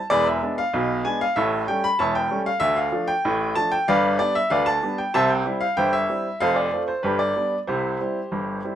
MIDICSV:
0, 0, Header, 1, 2, 480
1, 0, Start_track
1, 0, Key_signature, 0, "major"
1, 0, Tempo, 632244
1, 82, Time_signature, 2, 2, 24, 8
1, 6645, End_track
2, 0, Start_track
2, 0, Title_t, "Grand piano"
2, 0, Program_c, 0, 0
2, 76, Note_on_c, 0, 74, 106
2, 82, Note_on_c, 0, 40, 84
2, 83, Note_on_c, 0, 28, 77
2, 85, Note_on_c, 0, 68, 72
2, 85, Note_on_c, 0, 71, 71
2, 195, Note_off_c, 0, 68, 0
2, 195, Note_off_c, 0, 71, 0
2, 199, Note_off_c, 0, 74, 0
2, 203, Note_on_c, 0, 76, 69
2, 285, Note_off_c, 0, 40, 0
2, 286, Note_off_c, 0, 28, 0
2, 324, Note_on_c, 0, 56, 50
2, 325, Note_on_c, 0, 59, 49
2, 330, Note_on_c, 0, 62, 54
2, 393, Note_off_c, 0, 76, 0
2, 440, Note_on_c, 0, 77, 95
2, 454, Note_off_c, 0, 56, 0
2, 455, Note_off_c, 0, 59, 0
2, 458, Note_off_c, 0, 62, 0
2, 559, Note_on_c, 0, 35, 78
2, 562, Note_on_c, 0, 47, 82
2, 761, Note_off_c, 0, 35, 0
2, 763, Note_off_c, 0, 47, 0
2, 780, Note_off_c, 0, 77, 0
2, 795, Note_on_c, 0, 80, 86
2, 797, Note_on_c, 0, 56, 53
2, 799, Note_on_c, 0, 59, 52
2, 803, Note_on_c, 0, 62, 49
2, 916, Note_off_c, 0, 80, 0
2, 920, Note_on_c, 0, 77, 94
2, 928, Note_off_c, 0, 56, 0
2, 930, Note_off_c, 0, 59, 0
2, 933, Note_off_c, 0, 62, 0
2, 1032, Note_on_c, 0, 76, 86
2, 1036, Note_on_c, 0, 33, 76
2, 1038, Note_off_c, 0, 77, 0
2, 1038, Note_on_c, 0, 45, 93
2, 1042, Note_on_c, 0, 69, 63
2, 1042, Note_on_c, 0, 73, 60
2, 1225, Note_off_c, 0, 76, 0
2, 1240, Note_off_c, 0, 33, 0
2, 1240, Note_off_c, 0, 45, 0
2, 1262, Note_off_c, 0, 69, 0
2, 1262, Note_off_c, 0, 73, 0
2, 1276, Note_on_c, 0, 79, 95
2, 1281, Note_on_c, 0, 57, 47
2, 1282, Note_on_c, 0, 55, 49
2, 1287, Note_on_c, 0, 61, 50
2, 1395, Note_off_c, 0, 79, 0
2, 1396, Note_on_c, 0, 83, 101
2, 1411, Note_off_c, 0, 55, 0
2, 1411, Note_off_c, 0, 57, 0
2, 1415, Note_off_c, 0, 61, 0
2, 1511, Note_on_c, 0, 81, 83
2, 1513, Note_on_c, 0, 28, 79
2, 1514, Note_on_c, 0, 40, 74
2, 1515, Note_off_c, 0, 83, 0
2, 1519, Note_on_c, 0, 73, 70
2, 1522, Note_on_c, 0, 76, 69
2, 1628, Note_off_c, 0, 73, 0
2, 1629, Note_off_c, 0, 76, 0
2, 1632, Note_off_c, 0, 81, 0
2, 1634, Note_on_c, 0, 79, 94
2, 1716, Note_off_c, 0, 28, 0
2, 1717, Note_off_c, 0, 40, 0
2, 1753, Note_on_c, 0, 55, 53
2, 1754, Note_on_c, 0, 57, 51
2, 1756, Note_on_c, 0, 61, 52
2, 1825, Note_off_c, 0, 79, 0
2, 1869, Note_on_c, 0, 77, 93
2, 1884, Note_off_c, 0, 55, 0
2, 1885, Note_off_c, 0, 57, 0
2, 1886, Note_off_c, 0, 61, 0
2, 1972, Note_on_c, 0, 76, 108
2, 1978, Note_on_c, 0, 38, 77
2, 1980, Note_on_c, 0, 50, 91
2, 1990, Note_off_c, 0, 77, 0
2, 2097, Note_on_c, 0, 77, 78
2, 2101, Note_off_c, 0, 76, 0
2, 2187, Note_off_c, 0, 38, 0
2, 2187, Note_off_c, 0, 50, 0
2, 2218, Note_on_c, 0, 53, 53
2, 2223, Note_on_c, 0, 57, 55
2, 2225, Note_on_c, 0, 62, 55
2, 2331, Note_off_c, 0, 77, 0
2, 2335, Note_on_c, 0, 79, 101
2, 2353, Note_off_c, 0, 53, 0
2, 2357, Note_off_c, 0, 57, 0
2, 2358, Note_off_c, 0, 62, 0
2, 2467, Note_on_c, 0, 33, 82
2, 2468, Note_on_c, 0, 45, 81
2, 2671, Note_off_c, 0, 33, 0
2, 2672, Note_off_c, 0, 45, 0
2, 2683, Note_off_c, 0, 79, 0
2, 2699, Note_on_c, 0, 81, 104
2, 2704, Note_on_c, 0, 53, 50
2, 2706, Note_on_c, 0, 57, 51
2, 2708, Note_on_c, 0, 62, 51
2, 2821, Note_on_c, 0, 79, 98
2, 2823, Note_off_c, 0, 81, 0
2, 2837, Note_off_c, 0, 53, 0
2, 2838, Note_off_c, 0, 57, 0
2, 2840, Note_off_c, 0, 62, 0
2, 2944, Note_off_c, 0, 79, 0
2, 2947, Note_on_c, 0, 77, 102
2, 2949, Note_on_c, 0, 31, 83
2, 2949, Note_on_c, 0, 43, 90
2, 2951, Note_on_c, 0, 74, 78
2, 2957, Note_on_c, 0, 71, 79
2, 3152, Note_off_c, 0, 31, 0
2, 3153, Note_off_c, 0, 43, 0
2, 3170, Note_off_c, 0, 74, 0
2, 3175, Note_off_c, 0, 77, 0
2, 3176, Note_off_c, 0, 71, 0
2, 3181, Note_on_c, 0, 74, 96
2, 3184, Note_on_c, 0, 55, 50
2, 3186, Note_on_c, 0, 59, 52
2, 3192, Note_on_c, 0, 62, 60
2, 3304, Note_off_c, 0, 74, 0
2, 3305, Note_on_c, 0, 76, 93
2, 3317, Note_off_c, 0, 55, 0
2, 3318, Note_off_c, 0, 59, 0
2, 3322, Note_off_c, 0, 62, 0
2, 3418, Note_on_c, 0, 77, 92
2, 3421, Note_on_c, 0, 50, 79
2, 3423, Note_on_c, 0, 38, 72
2, 3425, Note_on_c, 0, 71, 73
2, 3426, Note_off_c, 0, 76, 0
2, 3429, Note_on_c, 0, 74, 73
2, 3537, Note_off_c, 0, 71, 0
2, 3538, Note_on_c, 0, 81, 102
2, 3539, Note_off_c, 0, 74, 0
2, 3542, Note_off_c, 0, 77, 0
2, 3627, Note_off_c, 0, 50, 0
2, 3628, Note_off_c, 0, 38, 0
2, 3665, Note_on_c, 0, 55, 48
2, 3667, Note_on_c, 0, 59, 49
2, 3670, Note_on_c, 0, 62, 55
2, 3769, Note_off_c, 0, 81, 0
2, 3783, Note_on_c, 0, 79, 79
2, 3796, Note_off_c, 0, 55, 0
2, 3798, Note_off_c, 0, 59, 0
2, 3800, Note_off_c, 0, 62, 0
2, 3904, Note_off_c, 0, 79, 0
2, 3904, Note_on_c, 0, 36, 85
2, 3904, Note_on_c, 0, 81, 109
2, 3907, Note_on_c, 0, 48, 94
2, 3912, Note_on_c, 0, 72, 87
2, 3912, Note_on_c, 0, 76, 93
2, 4020, Note_off_c, 0, 72, 0
2, 4020, Note_off_c, 0, 76, 0
2, 4022, Note_on_c, 0, 79, 69
2, 4024, Note_off_c, 0, 81, 0
2, 4108, Note_off_c, 0, 36, 0
2, 4110, Note_off_c, 0, 48, 0
2, 4144, Note_on_c, 0, 55, 53
2, 4145, Note_on_c, 0, 60, 53
2, 4152, Note_on_c, 0, 64, 56
2, 4214, Note_off_c, 0, 79, 0
2, 4256, Note_on_c, 0, 77, 91
2, 4276, Note_off_c, 0, 55, 0
2, 4276, Note_off_c, 0, 60, 0
2, 4281, Note_off_c, 0, 64, 0
2, 4379, Note_off_c, 0, 77, 0
2, 4379, Note_on_c, 0, 79, 99
2, 4383, Note_on_c, 0, 31, 75
2, 4384, Note_on_c, 0, 43, 69
2, 4389, Note_on_c, 0, 76, 66
2, 4393, Note_on_c, 0, 72, 78
2, 4489, Note_off_c, 0, 76, 0
2, 4500, Note_off_c, 0, 72, 0
2, 4501, Note_off_c, 0, 79, 0
2, 4501, Note_on_c, 0, 76, 94
2, 4587, Note_off_c, 0, 31, 0
2, 4587, Note_off_c, 0, 43, 0
2, 4626, Note_on_c, 0, 55, 46
2, 4628, Note_on_c, 0, 60, 42
2, 4632, Note_on_c, 0, 64, 47
2, 4758, Note_off_c, 0, 55, 0
2, 4759, Note_off_c, 0, 60, 0
2, 4761, Note_off_c, 0, 64, 0
2, 4844, Note_off_c, 0, 76, 0
2, 4862, Note_on_c, 0, 77, 105
2, 4867, Note_on_c, 0, 29, 72
2, 4867, Note_on_c, 0, 41, 87
2, 4872, Note_on_c, 0, 69, 78
2, 4872, Note_on_c, 0, 72, 73
2, 4980, Note_off_c, 0, 69, 0
2, 4980, Note_off_c, 0, 72, 0
2, 4980, Note_on_c, 0, 74, 75
2, 4983, Note_off_c, 0, 77, 0
2, 5070, Note_off_c, 0, 29, 0
2, 5070, Note_off_c, 0, 41, 0
2, 5110, Note_on_c, 0, 60, 50
2, 5112, Note_on_c, 0, 57, 46
2, 5115, Note_on_c, 0, 65, 49
2, 5174, Note_off_c, 0, 74, 0
2, 5222, Note_on_c, 0, 72, 72
2, 5241, Note_off_c, 0, 60, 0
2, 5242, Note_off_c, 0, 57, 0
2, 5244, Note_off_c, 0, 65, 0
2, 5337, Note_on_c, 0, 71, 74
2, 5343, Note_on_c, 0, 31, 67
2, 5344, Note_off_c, 0, 72, 0
2, 5346, Note_on_c, 0, 43, 79
2, 5349, Note_on_c, 0, 62, 60
2, 5351, Note_on_c, 0, 67, 63
2, 5459, Note_on_c, 0, 74, 85
2, 5460, Note_off_c, 0, 62, 0
2, 5461, Note_off_c, 0, 67, 0
2, 5462, Note_off_c, 0, 71, 0
2, 5549, Note_off_c, 0, 31, 0
2, 5551, Note_off_c, 0, 43, 0
2, 5589, Note_on_c, 0, 55, 43
2, 5593, Note_on_c, 0, 59, 39
2, 5596, Note_on_c, 0, 62, 43
2, 5722, Note_off_c, 0, 55, 0
2, 5725, Note_off_c, 0, 59, 0
2, 5727, Note_off_c, 0, 62, 0
2, 5753, Note_off_c, 0, 74, 0
2, 5826, Note_on_c, 0, 72, 74
2, 5831, Note_on_c, 0, 36, 71
2, 5835, Note_on_c, 0, 48, 70
2, 5838, Note_on_c, 0, 64, 55
2, 5839, Note_on_c, 0, 67, 56
2, 6038, Note_off_c, 0, 36, 0
2, 6040, Note_off_c, 0, 48, 0
2, 6073, Note_off_c, 0, 64, 0
2, 6077, Note_on_c, 0, 55, 39
2, 6084, Note_on_c, 0, 60, 38
2, 6085, Note_on_c, 0, 64, 41
2, 6210, Note_off_c, 0, 55, 0
2, 6215, Note_off_c, 0, 60, 0
2, 6215, Note_off_c, 0, 64, 0
2, 6315, Note_on_c, 0, 31, 65
2, 6315, Note_on_c, 0, 43, 65
2, 6522, Note_off_c, 0, 31, 0
2, 6522, Note_off_c, 0, 43, 0
2, 6566, Note_on_c, 0, 55, 41
2, 6566, Note_on_c, 0, 60, 42
2, 6570, Note_on_c, 0, 64, 42
2, 6645, Note_off_c, 0, 55, 0
2, 6645, Note_off_c, 0, 60, 0
2, 6645, Note_off_c, 0, 64, 0
2, 6645, Note_off_c, 0, 67, 0
2, 6645, Note_off_c, 0, 72, 0
2, 6645, End_track
0, 0, End_of_file